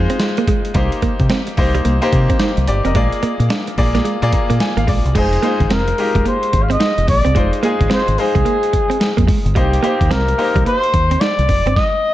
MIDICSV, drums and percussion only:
0, 0, Header, 1, 2, 480
1, 0, Start_track
1, 0, Tempo, 550459
1, 656, Time_signature, 4, 2, 24, 8
1, 10585, End_track
2, 0, Start_track
2, 0, Title_t, "Drums"
2, 85, Note_on_c, 9, 42, 60
2, 170, Note_off_c, 9, 42, 0
2, 170, Note_on_c, 9, 42, 72
2, 171, Note_on_c, 9, 38, 108
2, 257, Note_off_c, 9, 42, 0
2, 258, Note_off_c, 9, 38, 0
2, 324, Note_on_c, 9, 42, 48
2, 411, Note_off_c, 9, 42, 0
2, 414, Note_on_c, 9, 42, 81
2, 415, Note_on_c, 9, 36, 93
2, 501, Note_off_c, 9, 42, 0
2, 502, Note_off_c, 9, 36, 0
2, 565, Note_on_c, 9, 42, 46
2, 649, Note_off_c, 9, 42, 0
2, 649, Note_on_c, 9, 42, 71
2, 652, Note_on_c, 9, 36, 93
2, 736, Note_off_c, 9, 42, 0
2, 740, Note_off_c, 9, 36, 0
2, 804, Note_on_c, 9, 42, 53
2, 891, Note_off_c, 9, 42, 0
2, 892, Note_on_c, 9, 42, 67
2, 894, Note_on_c, 9, 36, 83
2, 979, Note_off_c, 9, 42, 0
2, 981, Note_off_c, 9, 36, 0
2, 1042, Note_on_c, 9, 42, 46
2, 1044, Note_on_c, 9, 36, 84
2, 1129, Note_off_c, 9, 42, 0
2, 1129, Note_on_c, 9, 42, 70
2, 1130, Note_on_c, 9, 38, 113
2, 1131, Note_off_c, 9, 36, 0
2, 1216, Note_off_c, 9, 42, 0
2, 1217, Note_off_c, 9, 38, 0
2, 1280, Note_on_c, 9, 42, 56
2, 1367, Note_off_c, 9, 42, 0
2, 1371, Note_on_c, 9, 46, 69
2, 1375, Note_on_c, 9, 36, 85
2, 1459, Note_off_c, 9, 46, 0
2, 1463, Note_off_c, 9, 36, 0
2, 1525, Note_on_c, 9, 42, 53
2, 1612, Note_off_c, 9, 42, 0
2, 1613, Note_on_c, 9, 42, 70
2, 1700, Note_off_c, 9, 42, 0
2, 1762, Note_on_c, 9, 42, 47
2, 1849, Note_off_c, 9, 42, 0
2, 1852, Note_on_c, 9, 42, 73
2, 1854, Note_on_c, 9, 36, 91
2, 1940, Note_off_c, 9, 42, 0
2, 1942, Note_off_c, 9, 36, 0
2, 2003, Note_on_c, 9, 42, 59
2, 2005, Note_on_c, 9, 36, 95
2, 2088, Note_off_c, 9, 42, 0
2, 2088, Note_on_c, 9, 42, 73
2, 2089, Note_on_c, 9, 38, 106
2, 2092, Note_off_c, 9, 36, 0
2, 2175, Note_off_c, 9, 42, 0
2, 2176, Note_off_c, 9, 38, 0
2, 2242, Note_on_c, 9, 42, 46
2, 2329, Note_off_c, 9, 42, 0
2, 2332, Note_on_c, 9, 42, 89
2, 2420, Note_off_c, 9, 42, 0
2, 2485, Note_on_c, 9, 42, 49
2, 2571, Note_off_c, 9, 42, 0
2, 2571, Note_on_c, 9, 42, 72
2, 2572, Note_on_c, 9, 36, 93
2, 2658, Note_off_c, 9, 42, 0
2, 2660, Note_off_c, 9, 36, 0
2, 2725, Note_on_c, 9, 42, 55
2, 2812, Note_off_c, 9, 42, 0
2, 2813, Note_on_c, 9, 42, 69
2, 2901, Note_off_c, 9, 42, 0
2, 2965, Note_on_c, 9, 42, 46
2, 3052, Note_off_c, 9, 42, 0
2, 3053, Note_on_c, 9, 42, 70
2, 3055, Note_on_c, 9, 38, 118
2, 3140, Note_off_c, 9, 42, 0
2, 3142, Note_off_c, 9, 38, 0
2, 3203, Note_on_c, 9, 42, 51
2, 3290, Note_off_c, 9, 42, 0
2, 3294, Note_on_c, 9, 46, 67
2, 3295, Note_on_c, 9, 36, 84
2, 3381, Note_off_c, 9, 46, 0
2, 3383, Note_off_c, 9, 36, 0
2, 3444, Note_on_c, 9, 38, 69
2, 3446, Note_on_c, 9, 42, 52
2, 3531, Note_off_c, 9, 38, 0
2, 3533, Note_off_c, 9, 42, 0
2, 3534, Note_on_c, 9, 42, 65
2, 3621, Note_off_c, 9, 42, 0
2, 3683, Note_on_c, 9, 42, 50
2, 3770, Note_off_c, 9, 42, 0
2, 3772, Note_on_c, 9, 42, 81
2, 3774, Note_on_c, 9, 36, 93
2, 3859, Note_off_c, 9, 42, 0
2, 3861, Note_off_c, 9, 36, 0
2, 3926, Note_on_c, 9, 42, 63
2, 4013, Note_off_c, 9, 42, 0
2, 4014, Note_on_c, 9, 42, 75
2, 4015, Note_on_c, 9, 38, 107
2, 4101, Note_off_c, 9, 42, 0
2, 4102, Note_off_c, 9, 38, 0
2, 4164, Note_on_c, 9, 42, 49
2, 4251, Note_off_c, 9, 42, 0
2, 4254, Note_on_c, 9, 36, 102
2, 4255, Note_on_c, 9, 46, 85
2, 4342, Note_off_c, 9, 36, 0
2, 4343, Note_off_c, 9, 46, 0
2, 4410, Note_on_c, 9, 42, 48
2, 4494, Note_on_c, 9, 36, 96
2, 4495, Note_off_c, 9, 42, 0
2, 4495, Note_on_c, 9, 42, 70
2, 4495, Note_on_c, 9, 49, 88
2, 4581, Note_off_c, 9, 36, 0
2, 4582, Note_off_c, 9, 42, 0
2, 4582, Note_off_c, 9, 49, 0
2, 4645, Note_on_c, 9, 42, 50
2, 4732, Note_off_c, 9, 42, 0
2, 4733, Note_on_c, 9, 42, 65
2, 4820, Note_off_c, 9, 42, 0
2, 4885, Note_on_c, 9, 36, 83
2, 4886, Note_on_c, 9, 42, 44
2, 4973, Note_off_c, 9, 36, 0
2, 4973, Note_off_c, 9, 42, 0
2, 4973, Note_on_c, 9, 42, 71
2, 4975, Note_on_c, 9, 38, 114
2, 5061, Note_off_c, 9, 42, 0
2, 5062, Note_off_c, 9, 38, 0
2, 5124, Note_on_c, 9, 42, 57
2, 5211, Note_off_c, 9, 42, 0
2, 5216, Note_on_c, 9, 46, 70
2, 5303, Note_off_c, 9, 46, 0
2, 5364, Note_on_c, 9, 36, 92
2, 5367, Note_on_c, 9, 42, 51
2, 5451, Note_off_c, 9, 36, 0
2, 5455, Note_off_c, 9, 42, 0
2, 5455, Note_on_c, 9, 42, 67
2, 5542, Note_off_c, 9, 42, 0
2, 5606, Note_on_c, 9, 42, 53
2, 5693, Note_off_c, 9, 42, 0
2, 5695, Note_on_c, 9, 42, 79
2, 5697, Note_on_c, 9, 36, 99
2, 5782, Note_off_c, 9, 42, 0
2, 5784, Note_off_c, 9, 36, 0
2, 5847, Note_on_c, 9, 42, 59
2, 5934, Note_off_c, 9, 42, 0
2, 5934, Note_on_c, 9, 42, 73
2, 5935, Note_on_c, 9, 38, 107
2, 6021, Note_off_c, 9, 42, 0
2, 6022, Note_off_c, 9, 38, 0
2, 6086, Note_on_c, 9, 42, 46
2, 6173, Note_off_c, 9, 42, 0
2, 6174, Note_on_c, 9, 46, 86
2, 6177, Note_on_c, 9, 36, 101
2, 6261, Note_off_c, 9, 46, 0
2, 6264, Note_off_c, 9, 36, 0
2, 6329, Note_on_c, 9, 42, 50
2, 6415, Note_off_c, 9, 42, 0
2, 6415, Note_on_c, 9, 42, 70
2, 6416, Note_on_c, 9, 36, 91
2, 6503, Note_off_c, 9, 36, 0
2, 6503, Note_off_c, 9, 42, 0
2, 6567, Note_on_c, 9, 42, 48
2, 6654, Note_off_c, 9, 42, 0
2, 6656, Note_on_c, 9, 42, 66
2, 6744, Note_off_c, 9, 42, 0
2, 6807, Note_on_c, 9, 36, 83
2, 6808, Note_on_c, 9, 42, 43
2, 6894, Note_off_c, 9, 42, 0
2, 6894, Note_on_c, 9, 42, 70
2, 6895, Note_off_c, 9, 36, 0
2, 6896, Note_on_c, 9, 38, 114
2, 6982, Note_off_c, 9, 42, 0
2, 6983, Note_off_c, 9, 38, 0
2, 7046, Note_on_c, 9, 42, 52
2, 7133, Note_off_c, 9, 42, 0
2, 7134, Note_on_c, 9, 46, 64
2, 7222, Note_off_c, 9, 46, 0
2, 7284, Note_on_c, 9, 36, 86
2, 7288, Note_on_c, 9, 42, 51
2, 7372, Note_off_c, 9, 36, 0
2, 7375, Note_off_c, 9, 42, 0
2, 7375, Note_on_c, 9, 42, 64
2, 7463, Note_off_c, 9, 42, 0
2, 7526, Note_on_c, 9, 42, 51
2, 7613, Note_off_c, 9, 42, 0
2, 7616, Note_on_c, 9, 42, 81
2, 7617, Note_on_c, 9, 36, 90
2, 7703, Note_off_c, 9, 42, 0
2, 7704, Note_off_c, 9, 36, 0
2, 7770, Note_on_c, 9, 42, 60
2, 7856, Note_off_c, 9, 42, 0
2, 7856, Note_on_c, 9, 42, 79
2, 7857, Note_on_c, 9, 38, 108
2, 7943, Note_off_c, 9, 42, 0
2, 7944, Note_off_c, 9, 38, 0
2, 8006, Note_on_c, 9, 42, 52
2, 8008, Note_on_c, 9, 36, 98
2, 8093, Note_off_c, 9, 42, 0
2, 8095, Note_off_c, 9, 36, 0
2, 8096, Note_on_c, 9, 36, 102
2, 8096, Note_on_c, 9, 46, 83
2, 8183, Note_off_c, 9, 36, 0
2, 8184, Note_off_c, 9, 46, 0
2, 8250, Note_on_c, 9, 42, 47
2, 8336, Note_off_c, 9, 42, 0
2, 8336, Note_on_c, 9, 36, 91
2, 8336, Note_on_c, 9, 42, 72
2, 8423, Note_off_c, 9, 36, 0
2, 8424, Note_off_c, 9, 42, 0
2, 8488, Note_on_c, 9, 42, 54
2, 8576, Note_off_c, 9, 42, 0
2, 8578, Note_on_c, 9, 42, 68
2, 8665, Note_off_c, 9, 42, 0
2, 8728, Note_on_c, 9, 36, 83
2, 8732, Note_on_c, 9, 42, 49
2, 8815, Note_off_c, 9, 36, 0
2, 8818, Note_off_c, 9, 42, 0
2, 8818, Note_on_c, 9, 42, 73
2, 8819, Note_on_c, 9, 38, 117
2, 8905, Note_off_c, 9, 42, 0
2, 8906, Note_off_c, 9, 38, 0
2, 8968, Note_on_c, 9, 42, 55
2, 9055, Note_off_c, 9, 42, 0
2, 9058, Note_on_c, 9, 46, 63
2, 9145, Note_off_c, 9, 46, 0
2, 9205, Note_on_c, 9, 36, 92
2, 9210, Note_on_c, 9, 42, 51
2, 9292, Note_off_c, 9, 36, 0
2, 9297, Note_off_c, 9, 42, 0
2, 9298, Note_on_c, 9, 42, 73
2, 9386, Note_off_c, 9, 42, 0
2, 9448, Note_on_c, 9, 42, 51
2, 9535, Note_off_c, 9, 42, 0
2, 9536, Note_on_c, 9, 42, 73
2, 9538, Note_on_c, 9, 36, 93
2, 9623, Note_off_c, 9, 42, 0
2, 9625, Note_off_c, 9, 36, 0
2, 9689, Note_on_c, 9, 42, 63
2, 9776, Note_off_c, 9, 42, 0
2, 9776, Note_on_c, 9, 42, 68
2, 9777, Note_on_c, 9, 38, 111
2, 9863, Note_off_c, 9, 42, 0
2, 9864, Note_off_c, 9, 38, 0
2, 9930, Note_on_c, 9, 42, 47
2, 10017, Note_off_c, 9, 42, 0
2, 10018, Note_on_c, 9, 36, 97
2, 10018, Note_on_c, 9, 46, 84
2, 10105, Note_off_c, 9, 36, 0
2, 10105, Note_off_c, 9, 46, 0
2, 10174, Note_on_c, 9, 42, 48
2, 10259, Note_on_c, 9, 36, 105
2, 10261, Note_off_c, 9, 42, 0
2, 10262, Note_on_c, 9, 38, 83
2, 10346, Note_off_c, 9, 36, 0
2, 10349, Note_off_c, 9, 38, 0
2, 10585, End_track
0, 0, End_of_file